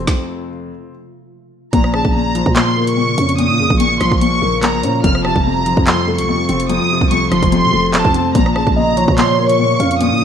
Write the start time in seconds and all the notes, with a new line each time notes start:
Already playing: F2 A3 C4
0.07 kick, snare
1.73 A#1 A#2 C#3 F3 A#3 F4 A#5, kick, closed hi-hat
1.84 cross-stick
1.94 C#3 A5, cross-stick
2.05 A#1, kick
2.15 A#2 A#5
2.35 F3, closed hi-hat
2.46 A#2, kick
2.56 A#2 C6, clap, closed hi-hat
2.77 A#3
2.87 C#6, closed hi-hat
2.97 A#2
3.18 F2 C#4, closed hi-hat
3.29 closed hi-hat
3.38 A#2 D#6, closed hi-hat
3.49 A#2
3.59 F2 C#3
3.70 A#1, kick
3.80 A#2 C#6, closed hi-hat
3.91 A1
4.01 A#1 F3 C6, cross-stick, closed hi-hat
4.12 A#1, kick
4.21 A#2 C#6, closed hi-hat
4.42 A#1 A#3
4.62 A#2 A#5, clap, closed hi-hat
4.83 A#2 C#4, closed hi-hat
5.04 F1 F2 C3 A3 F6, kick, closed hi-hat
5.15 cross-stick
5.25 C3 A5, cross-stick
5.36 F1, kick
5.45 F2 A#5
5.66 F3, closed hi-hat
5.77 F2, kick
5.87 F2 C6, clap, closed hi-hat
6.07 A3
6.18 C2 C#6, closed hi-hat
6.28 F2
6.34 F2
6.49 F1 C4, closed hi-hat
6.60 closed hi-hat
6.69 F2 D#6, closed hi-hat
6.90 C3
7.01 C2, kick
7.11 F2 C#6, closed hi-hat
7.32 F1 F3 C6, cross-stick, closed hi-hat
7.43 F1, kick, closed hi-hat
7.52 F2 C6, closed hi-hat
7.63 C3
7.73 F1 A3
7.94 F2 A5, clap, closed hi-hat
8.05 F2, kick
8.14 C4, closed hi-hat
8.35 A#1 A#2 C#3 A#3 A#5, kick, closed hi-hat
8.46 cross-stick
8.56 C#3 A5, cross-stick
8.67 A#1, kick
8.76 A#2 D#5 A#5
8.97 F3 C#5, closed hi-hat
9.08 A#2, kick
9.18 A#2 C6, clap, closed hi-hat
9.39 A#3
9.49 C#6, closed hi-hat
9.59 A#2
9.80 F2 C#4 F5, closed hi-hat
9.91 closed hi-hat
10.00 A#2 D#6, closed hi-hat
10.12 A#2
10.21 F2